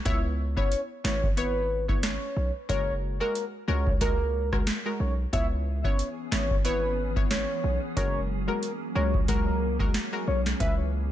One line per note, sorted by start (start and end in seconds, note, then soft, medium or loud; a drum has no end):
0.05 0.57 C#2 loud
0.05 0.52 B3 loud
0.05 0.53 E4 medium
0.05 0.53 C#5 loud
0.05 0.19 E5 loud
0.05 kick loud
0.05 closed hi-hat medium
0.57 0.73 B3 medium
0.57 0.73 E4 medium
0.57 0.81 C#5 medium
0.57 0.73 C#5 medium
0.57 kick loud
0.72 closed hi-hat medium
1.04 2.18 G#1 loud
1.04 1.24 B3 medium
1.04 1.24 E4 medium
1.04 1.28 C#5 medium
1.04 1.24 C#5 medium
1.04 snare loud
1.23 kick loud
1.37 1.84 B3 medium
1.37 1.84 E4 medium
1.37 1.86 B4 loud
1.37 1.85 C#5 loud
1.37 closed hi-hat medium
1.88 2.05 B3 medium
1.88 2.05 E4 medium
1.88 2.05 C#5 medium
1.88 kick medium
2.03 2.52 C#5 medium
2.03 snare loud
2.03 closed hi-hat medium
2.37 2.51 B1 loud
2.69 3.21 F#1 loud
2.69 3.16 G#3 medium
2.69 3.16 F#4 medium
2.69 3.16 A#4 loud
2.69 2.93 C#5 loud
2.69 kick loud
2.69 closed hi-hat medium
3.20 3.37 G#3 medium
3.20 3.37 F#4 medium
3.20 3.45 A#4 medium
3.20 3.37 A#4 medium
3.35 closed hi-hat medium
3.68 4.63 C#2 loud
3.68 3.88 G#3 medium
3.68 3.88 F#4 medium
3.68 3.88 A#4 medium
3.68 3.92 C#5 medium
3.87 kick loud
4.01 4.48 G#3 loud
4.01 4.48 F#4 medium
4.01 4.50 A#4 loud
4.01 4.48 A#4 loud
4.01 kick medium
4.01 closed hi-hat medium
4.52 4.69 G#3 medium
4.52 4.69 F#4 medium
4.52 4.69 A#4 medium
4.52 kick medium
4.52 cross-stick loud
4.67 snare loud
4.67 closed hi-hat medium
4.85 5.02 G#3 medium
4.85 5.02 F#4 medium
4.85 5.02 A#4 medium
5.00 5.26 B1 medium
5.00 5.13 C#5 medium
5.33 5.85 C#2 loud
5.33 7.94 E3 medium
5.33 5.80 B3 medium
5.33 7.94 B3 medium
5.33 7.94 C#4 medium
5.33 5.80 E4 medium
5.33 11.12 G#4 medium
5.33 5.80 C#5 loud
5.33 5.46 E5 loud
5.33 kick loud
5.33 closed hi-hat medium
5.84 6.00 B3 medium
5.84 6.01 E4 medium
5.84 6.08 C#5 medium
5.84 6.01 C#5 medium
5.84 kick loud
5.99 closed hi-hat medium
6.32 7.45 G#1 loud
6.32 6.51 B3 medium
6.32 6.52 E4 medium
6.32 6.56 C#5 medium
6.32 6.52 C#5 medium
6.32 snare loud
6.51 kick loud
6.65 7.12 B3 medium
6.65 7.12 E4 medium
6.65 7.13 B4 loud
6.65 7.12 C#5 loud
6.65 closed hi-hat medium
7.16 7.32 B3 medium
7.16 7.32 E4 medium
7.16 7.33 C#5 medium
7.16 kick loud
7.30 7.79 C#5 medium
7.30 snare loud
7.30 closed hi-hat medium
7.64 7.78 B1 medium
7.96 8.49 F#1 loud
7.96 10.58 F#3 medium
7.96 8.44 G#3 loud
7.96 10.58 A#3 medium
7.96 11.12 C#4 medium
7.96 8.44 F#4 medium
7.96 8.44 A#4 loud
7.96 8.20 C#5 loud
7.96 kick loud
7.96 closed hi-hat medium
8.48 8.64 G#3 medium
8.48 8.64 F#4 medium
8.48 8.72 A#4 medium
8.48 8.64 A#4 medium
8.63 closed hi-hat medium
8.95 9.91 C#2 loud
8.95 9.15 G#3 medium
8.95 9.15 F#4 medium
8.95 9.15 A#4 medium
8.95 9.19 C#5 medium
9.14 kick loud
9.28 9.75 G#3 loud
9.28 9.76 F#4 medium
9.28 9.77 A#4 loud
9.28 9.76 A#4 loud
9.28 kick loud
9.28 closed hi-hat medium
9.79 9.96 G#3 medium
9.79 9.96 F#4 medium
9.79 9.96 A#4 medium
9.79 kick loud
9.94 snare loud
9.94 closed hi-hat medium
10.12 10.29 G#3 medium
10.12 10.29 F#4 medium
10.12 10.29 A#4 medium
10.27 10.53 B1 medium
10.27 10.41 C#5 medium
10.46 snare medium
10.60 11.12 C#2 loud
10.60 11.07 E3 medium
10.60 11.12 E3 medium
10.60 11.12 B3 medium
10.60 11.07 C#4 medium
10.60 11.07 B4 loud
10.60 10.74 E5 loud
10.60 kick loud
10.60 closed hi-hat medium